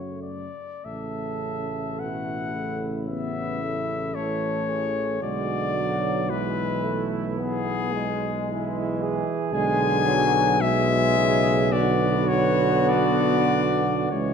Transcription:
Already playing: tuba F#2, trombone C#3, trombone section A3, flugelhorn F#4, cornet C#5
0.22 cornet D5
0.83 tuba A1, trombone C#3, trombone section A3, flugelhorn A4, cornet E5
1.99 trombone B2, flugelhorn E4, cornet F#5
2.55 trombone C#3
3.09 trombone section B3, flugelhorn E4, cornet E5
3.62 trombone section A3
4.15 trombone E3, trombone section A3, flugelhorn A4, cornet C#5
4.69 flugelhorn G#4
5.21 tuba B1, trombone D3, trombone section G#3, flugelhorn F#4, cornet D5
5.75 trombone section F#3
6.28 trombone E3, trombone section G#3, flugelhorn E4, cornet B4
6.83 trombone section A3
7.37 trombone section B3, cornet G#4
7.92 trombone section G#3
8.48 trombone E3, flugelhorn E4
9.01 flugelhorn G#4
9.52 tuba B1, trombone D3, trombone section G#3, cornet G#5
10.06 trombone section F#3
10.60 trombone B2, trombone section G#3, flugelhorn G#4, cornet E5
11.16 trombone C#3
11.71 trombone D3, trombone section B3, flugelhorn F#4, cornet D5
12.28 cornet C#5
12.89 cornet D5
14.11 tuba C#2, trombone E3, trombone section G#3, flugelhorn F#4, cornet C#5

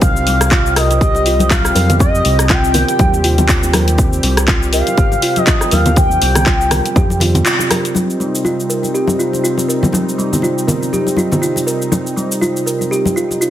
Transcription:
Already playing: analog synth pad C3 G3 C4
0.01 analog synth bass C2, kalimba C4, analog synth pad G4, analog synth lead F5, kick, closed hi-hat, muted conga, high conga, shaker
0.16 shaker
0.26 kalimba G3, open hi-hat, muted conga, shaker
0.41 cross-stick, closed hi-hat, shaker
0.51 kalimba F4, kick, clap, closed hi-hat, muted conga, shaker
0.66 shaker
0.76 kalimba A#4, analog synth lead D#5, cross-stick, open hi-hat, shaker
0.91 closed hi-hat, muted conga, shaker
1.01 kalimba G4, analog synth lead D#5, kick, closed hi-hat, shaker
1.15 muted conga, shaker
1.26 kalimba F4, open hi-hat, shaker
1.39 closed hi-hat, muted conga, high conga, shaker
1.51 kalimba F4, analog synth lead F5, kick, clap, closed hi-hat, high conga, shaker
1.65 cross-stick, muted conga, shaker
1.75 analog synth bass F2, kalimba A#4, open hi-hat, high conga, shaker
1.89 closed hi-hat, low conga, shaker
1.99 kalimba C4, analog synth lead D#5, kick, closed hi-hat, muted conga, high conga, shaker
2.15 shaker
2.25 analog synth bass C2, kalimba G3, open hi-hat, muted conga, shaker
2.39 cross-stick, closed hi-hat, shaker
2.49 kalimba F4, analog synth lead G5, kick, clap, closed hi-hat, muted conga, shaker
2.64 shaker
2.74 kalimba A#4, open hi-hat, low conga, shaker
2.88 closed hi-hat, muted conga, shaker
2.99 analog synth bass D#2, kalimba G4, kick, closed hi-hat, high conga, shaker
3.14 muted conga, shaker
3.24 kalimba F4, open hi-hat, shaker
3.38 closed hi-hat, muted conga, high conga, low conga, shaker
3.49 kalimba F4, kick, clap, open hi-hat, shaker
3.63 muted conga, shaker
3.73 kalimba A#4, cross-stick, open hi-hat, high conga, shaker
3.88 closed hi-hat, shaker
3.98 kalimba C4, kick, closed hi-hat, muted conga, high conga, shaker
4.13 shaker
4.23 analog synth bass C2, kalimba G3, open hi-hat, muted conga, shaker
4.37 cross-stick, closed hi-hat, shaker
4.48 kalimba F4, kick, clap, closed hi-hat, muted conga, shaker
4.63 shaker
4.73 kalimba A#4, analog synth lead F5, open hi-hat, shaker
4.87 closed hi-hat, muted conga, shaker
4.97 analog synth bass G1, kalimba G4, kick, closed hi-hat, shaker
5.12 muted conga, shaker
5.22 kalimba F4, open hi-hat, shaker
5.36 analog synth lead D#5, closed hi-hat, muted conga, high conga, shaker
5.47 kalimba F4, kick, clap, closed hi-hat, high conga, shaker
5.61 cross-stick, muted conga, shaker
5.71 analog synth bass D#2, kalimba A#4, analog synth lead F5, open hi-hat, high conga, shaker
5.86 closed hi-hat, low conga, shaker
5.96 kalimba C4, analog synth lead G5, kick, closed hi-hat, muted conga, high conga, shaker
6.11 shaker
6.22 analog synth bass C2, kalimba G3, open hi-hat, muted conga, shaker
6.35 cross-stick, closed hi-hat, low conga, shaker
6.46 kalimba F4, kick, clap, closed hi-hat, muted conga, shaker
6.61 shaker
6.71 kalimba A#4, cross-stick, open hi-hat, low conga, shaker
6.85 closed hi-hat, muted conga, shaker
6.96 analog synth bass F2, kalimba G4, kick, closed hi-hat, high conga, shaker
7.10 muted conga, shaker
7.20 kalimba F4, open hi-hat, low conga, shaker
7.35 closed hi-hat, muted conga, high conga, low conga, shaker
7.45 kalimba F4, clap, open hi-hat, shaker
7.59 muted conga, shaker
7.70 kalimba A#4, cross-stick, open hi-hat, high conga, shaker
7.85 closed hi-hat, shaker
7.95 analog synth pad C3 G3 C4 D#4, kalimba C4, muted conga, high conga, shaker
8.10 shaker
8.20 kalimba G3, muted conga, shaker
8.35 shaker
8.45 kalimba F4, muted conga, shaker
8.60 shaker
8.70 kalimba A#4, shaker
8.83 muted conga, shaker
8.94 kalimba G4, shaker
9.07 muted conga, high conga, shaker
9.19 kalimba F4, shaker
9.33 muted conga, shaker
9.44 kalimba F4, shaker
9.57 muted conga, shaker
9.69 kalimba A#4, shaker
9.83 high conga, low conga, shaker
9.93 kalimba C4, muted conga, high conga, shaker
10.09 shaker
10.18 kalimba G3, muted conga, shaker
10.33 low conga, shaker
10.42 kalimba F4, muted conga, shaker
10.58 shaker
10.67 kalimba A#4, low conga, shaker
10.83 muted conga, shaker
10.93 kalimba G4, high conga, shaker
11.07 muted conga, shaker
11.17 kalimba F4, high conga, shaker
11.32 muted conga, low conga, shaker
11.42 kalimba F4, shaker
11.56 muted conga, shaker
11.67 kalimba A#4, shaker
11.82 shaker
11.92 kalimba C4, muted conga, high conga, shaker
12.07 shaker
12.16 kalimba G3, muted conga, shaker
12.32 shaker
12.41 kalimba F4, muted conga, shaker
12.57 shaker
12.66 kalimba A#4, shaker
12.81 muted conga, shaker
12.91 kalimba G4, shaker
13.05 muted conga, high conga, shaker
13.16 kalimba F4, shaker
13.31 muted conga, shaker
13.41 kalimba F4, shaker

